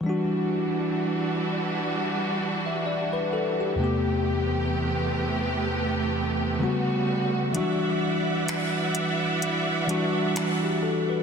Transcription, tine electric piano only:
X:1
M:4/4
L:1/16
Q:"Swing 16ths" 1/4=64
K:Em
V:1 name="Tine electric piano"
z8 z3 e d B A G- | G z12 z3 | z12 z G A B |]
V:2 name="Tine electric piano"
[E,G,DF]16 | [E,,C,A,B,G]12 [^C,G,A,B,F]4 | [E,F,G,DF]6- [E,F,G,DF] z3 [E,G,DF]6 |]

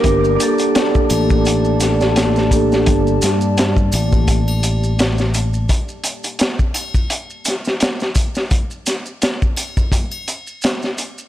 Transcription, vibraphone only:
X:1
M:4/4
L:1/8
Q:"Swing 16ths" 1/4=85
K:Gm
V:1 name="Vibraphone"
[B,DGB] [B,DGA]6 [B,DGA]- | [B,DGA] z6 z | z8 | z8 |]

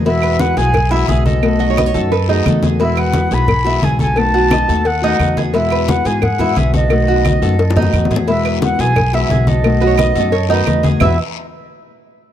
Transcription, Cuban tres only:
X:1
M:4/4
L:1/8
Q:1/4=175
K:E
V:1 name="Cuban tres"
E B2 G2 E G A- | A F d A2 D2 G | E B2 G2 E G A- | A F d A2 D2 G |
E B2 G2 E G A- | A F d A2 D2 G | E B2 G2 E G A- | A F d A2 D2 G |
[EBe] z6 z |]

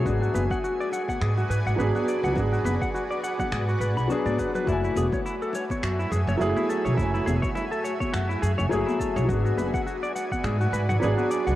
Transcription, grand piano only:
X:1
M:4/4
L:1/8
Q:"Swing 16ths" 1/4=104
K:F#m
V:1 name="Grand piano"
[F,B,DG]6 [F,B,DG]2 | [F,B,DG]6 [F,B,DG]2 | [F,A,Eg]6 [F,A,EG]2 | [F,A,Eg]6 [F,A,EG]2 |
[F,B,DG]6 [F,B,DG]2 |]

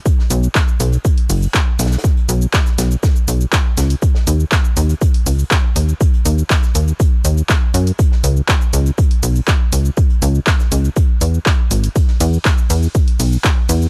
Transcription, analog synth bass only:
X:1
M:4/4
L:1/8
Q:1/4=121
K:Cb
V:1 name="Analog synth bass" clef=bass
z =B,,, z B,,, z ^F,,, z B,,, | z =B,,, z B,,, z B,,, z D,, | z E,, z E,, z D,, z E,, | z E,, z E,, z E,, z G,, |
z D,, z D,, z C,, z D,, | z D,, z D,, z F,, z A,,, | z =E,, z E,, z =B,,, z E,, |]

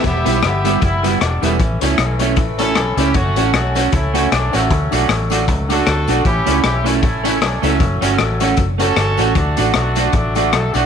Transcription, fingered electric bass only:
X:1
M:4/4
L:1/8
Q:"Swing" 1/4=154
K:Edor
V:1 name="Fingered electric bass" clef=bass
E,,, B,,, G,,,2 F,,,2 E,,, E,,, | A,,, C,, B,,,2 A,,,2 B,,, C,, | F,,, A,,, B,,,2 C,,2 B,,, A,,, | D,, B,,, A,,,2 C,,2 D,, B,,, |
A,,, C,, B,,,2 A,,,2 B,,, C,, | F,,, G,,, A,,,2 F,,,2 G,,, A,,, | D,, A,,, B,,,2 A,,,2 B,,, B,,, |]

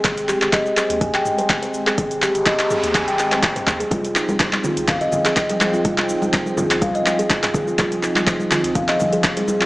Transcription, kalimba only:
X:1
M:4/4
L:1/16
Q:"Swing 16ths" 1/4=124
K:Fm
V:1 name="Kalimba"
A z G z e z A z a g z c z c z A | A z G z e z A z a g z c z c z A | F z E z c z F z f e z A z A z F | F z E z c z F z f e z A z A z F |
F z E z c z F z f e z A z A z F |]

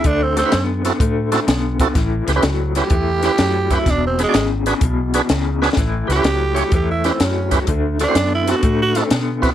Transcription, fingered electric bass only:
X:1
M:4/4
L:1/8
Q:"Swing" 1/4=126
K:Amix
V:1 name="Fingered electric bass" clef=bass
D,,2 F,,2 A,,2 B,,,2 | A,,, C,, C,,2 E,,2 F,,2 | E,,,2 ^G,,,2 B,,,2 C,,2 | A,,, C,, C,,2 E,,2 F,,2 |
D,,2 F,,2 A,,2 B,,2 |]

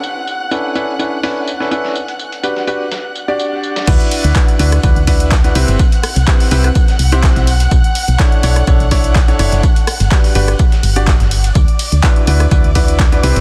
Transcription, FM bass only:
X:1
M:4/4
L:1/16
Q:"Swing 16ths" 1/4=125
K:Dmix
V:1 name="FM bass" clef=bass
z16 | z16 | D,, z2 D,, z2 D,,2 D,, D,,4- D,, C,, G,,, | z3 C,, z2 C,,2 z2 C,,3 B,,,3 |
B,,, z2 B,,, z2 B,,,2 B,,, B,,,4- B,,, F,,, F,,, | z3 G,,, z2 G,,,2 z2 G,,,3 G,,,3 | D,, z2 D,, z2 D,,2 D,, D,,4- D,, C,, G,,, |]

